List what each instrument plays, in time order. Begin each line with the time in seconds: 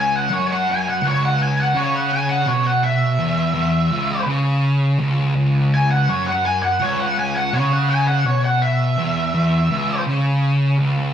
Already playing: distorted electric guitar C#2, lead electric guitar G#5
0.16 lead electric guitar F#5
0.30 distorted electric guitar F#2, lead electric guitar C#5
0.52 lead electric guitar F#5
0.71 lead electric guitar G#5
0.89 lead electric guitar F#5
1.02 distorted electric guitar C#2
1.07 lead electric guitar C#5
1.25 lead electric guitar F#5
1.42 lead electric guitar G#5
1.60 lead electric guitar F#5
1.75 distorted electric guitar C#3, lead electric guitar C#5
1.96 lead electric guitar F#5
2.13 lead electric guitar G#5
2.29 lead electric guitar F#5
2.47 distorted electric guitar B2, lead electric guitar C#5
2.67 lead electric guitar F#5
2.84 lead electric guitar E5
3.19 distorted electric guitar E2
3.54 distorted electric guitar E2
3.91 distorted electric guitar C#2
4.26 distorted electric guitar C#3
4.99 distorted electric guitar C#2
5.35 distorted electric guitar C#2
5.74 lead electric guitar G#5
5.91 lead electric guitar F#5
6.09 distorted electric guitar F#2, lead electric guitar C#5
6.26 lead electric guitar F#5
6.45 lead electric guitar G#5
6.63 lead electric guitar F#5
6.80 distorted electric guitar C#2, lead electric guitar C#5
7.00 lead electric guitar F#5
7.18 lead electric guitar G#5
7.36 lead electric guitar F#5
7.52 distorted electric guitar C#3, lead electric guitar C#5
7.73 lead electric guitar F#5
7.90 lead electric guitar G#5
8.07 lead electric guitar F#5
8.25 distorted electric guitar B2, lead electric guitar C#5
8.44 lead electric guitar F#5
8.62 lead electric guitar E5
8.98 distorted electric guitar E2
9.34 distorted electric guitar E2
9.70 distorted electric guitar C#2
10.06 distorted electric guitar C#3
10.78 distorted electric guitar C#2